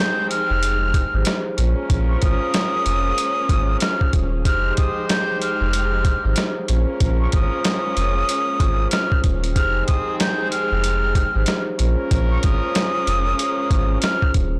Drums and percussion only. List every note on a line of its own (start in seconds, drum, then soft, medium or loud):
0.31 closed hi-hat medium
0.63 closed hi-hat loud
0.94 kick medium
0.94 closed hi-hat medium
1.25 snare loud
1.25 closed hi-hat loud
1.58 closed hi-hat medium
1.90 kick loud
1.90 closed hi-hat loud
2.22 kick medium
2.22 closed hi-hat medium
2.54 snare loud
2.54 closed hi-hat loud
2.86 closed hi-hat medium
3.18 closed hi-hat loud
3.49 kick medium
3.49 closed hi-hat medium
3.80 snare loud
3.80 closed hi-hat loud
4.01 kick medium
4.13 kick medium
4.13 closed hi-hat medium
4.45 kick loud
4.45 closed hi-hat loud
4.77 kick medium
4.77 closed hi-hat medium
5.09 snare loud
5.09 closed hi-hat loud
5.42 closed hi-hat medium
5.73 closed hi-hat loud
6.05 kick loud
6.05 closed hi-hat medium
6.36 snare loud
6.36 closed hi-hat loud
6.68 closed hi-hat medium
7.00 kick loud
7.00 closed hi-hat medium
7.32 kick medium
7.32 closed hi-hat medium
7.64 snare loud
7.64 closed hi-hat loud
7.97 closed hi-hat medium
8.29 closed hi-hat loud
8.60 kick medium
8.60 closed hi-hat medium
8.91 snare loud
8.91 closed hi-hat loud
9.12 kick medium
9.24 kick medium
9.24 closed hi-hat medium
9.44 closed hi-hat medium
9.56 kick loud
9.56 closed hi-hat medium
9.88 kick medium
9.88 closed hi-hat medium
10.20 snare loud
10.20 closed hi-hat loud
10.52 closed hi-hat medium
10.84 closed hi-hat loud
11.15 kick medium
11.15 closed hi-hat medium
11.46 snare loud
11.46 closed hi-hat loud
11.79 closed hi-hat medium
12.11 kick loud
12.11 closed hi-hat loud
12.43 kick medium
12.43 closed hi-hat medium
12.75 snare loud
12.75 closed hi-hat loud
13.07 closed hi-hat medium
13.39 closed hi-hat loud
13.71 kick medium
13.71 closed hi-hat medium
14.02 snare loud
14.02 closed hi-hat loud
14.22 kick medium
14.34 kick medium
14.34 closed hi-hat medium